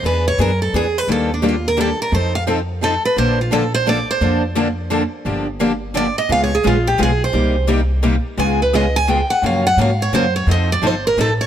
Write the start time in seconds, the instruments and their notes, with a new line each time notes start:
0.03 upright bass E2, steel-string acoustic guitar E3 B3 D4 G#4 B4
0.28 steel-string acoustic guitar C#5
0.38 upright bass F#2, steel-string acoustic guitar E3 B3 D4 G#4 A#4
0.62 steel-string acoustic guitar A4
0.73 upright bass E2, steel-string acoustic guitar E3 B3 D4 G#4
0.98 steel-string acoustic guitar B4
1.07 upright bass D#2, steel-string acoustic guitar D#3 G3 A#3 D4 G4
1.12 steel-string acoustic guitar A4
1.34 steel-string acoustic guitar D4
1.42 steel-string acoustic guitar D#3 G3 A#3 D4 G4
1.49 steel-string acoustic guitar F4
1.68 steel-string acoustic guitar A#4
1.77 steel-string acoustic guitar D#3 G3 A#3 D4 G4 A4
2.02 steel-string acoustic guitar A#4
2.12 upright bass F2, steel-string acoustic guitar F3 C4 D#4 A4 C5
2.35 steel-string acoustic guitar F5
2.47 steel-string acoustic guitar F3 C4 D#4 A4
2.83 steel-string acoustic guitar F3 C4 D#4 A4
3.05 steel-string acoustic guitar B4
3.16 upright bass A#1, steel-string acoustic guitar D3 F3 A#3 D4 A4 C5
3.41 steel-string acoustic guitar F4
3.52 steel-string acoustic guitar D3 F3 A#3 D4 A4
3.74 steel-string acoustic guitar C5
3.87 steel-string acoustic guitar D3 F3 A#3 D4 A4 D5
4.11 steel-string acoustic guitar C5
4.21 upright bass F2, steel-string acoustic guitar D3 F3 A#3 D4 A4
4.55 steel-string acoustic guitar D3 F3 A#3 D4 A4
4.90 steel-string acoustic guitar D3 F3 A#3 D4 A4
5.25 upright bass G1, steel-string acoustic guitar D3 F3 A#3 D4 G4
5.60 steel-string acoustic guitar D3 F3 A#3 D4 G4
5.94 steel-string acoustic guitar D3 F3 A#3 D4 G4 D5
6.18 steel-string acoustic guitar D#5
6.29 upright bass C#2, steel-string acoustic guitar C#3 G#3 B3 F4 G#4 F5
6.44 steel-string acoustic guitar C#5
6.55 steel-string acoustic guitar G#4
6.63 upright bass A#1, steel-string acoustic guitar C#3 G#3 B3 F4 G#4
6.87 steel-string acoustic guitar G4
6.98 upright bass B1, steel-string acoustic guitar C#3 G#3 B3 F4 G#4
7.03 steel-string acoustic guitar G#4
7.24 steel-string acoustic guitar C5
7.33 upright bass C2, steel-string acoustic guitar C3 G3 A#3 D#4 G4
7.67 steel-string acoustic guitar C3 G3 A#3 D#4 G4
8.03 steel-string acoustic guitar C3 G3 A#3 D#4 G4
8.37 upright bass C#2, steel-string acoustic guitar C#3 G#3 B3 F4 G#4 G#5
8.62 steel-string acoustic guitar B4
8.73 steel-string acoustic guitar C#3 G#3 B3 F4 G#4 D#5
8.96 steel-string acoustic guitar G#5
9.08 steel-string acoustic guitar C#3 G#3 B3 F4 G#4 G5
9.30 steel-string acoustic guitar F#5
9.42 upright bass F#2, steel-string acoustic guitar C#3 F3 F#3 A#3 C#4 F4 F#4 A#4 F5
9.67 steel-string acoustic guitar F#5
9.77 upright bass G#2, steel-string acoustic guitar C#3 F3 F#3 A#3 C#4 F4 F#4 A#4
9.81 steel-string acoustic guitar F5
10.02 steel-string acoustic guitar C#5
10.12 upright bass F#2, steel-string acoustic guitar C#3 F3 F#3 A#3 C#4 F4 F#4 A#4 C5
10.36 steel-string acoustic guitar C#5
10.47 upright bass F2, steel-string acoustic guitar F3 C4 D#4 A4
10.51 steel-string acoustic guitar D#5
10.72 steel-string acoustic guitar D5
10.82 upright bass G1, steel-string acoustic guitar F3 C4 D#4 A4
10.87 steel-string acoustic guitar C5
11.07 steel-string acoustic guitar A#4
11.17 upright bass A1, steel-string acoustic guitar F3 C4 D#4 A4
11.41 steel-string acoustic guitar C#5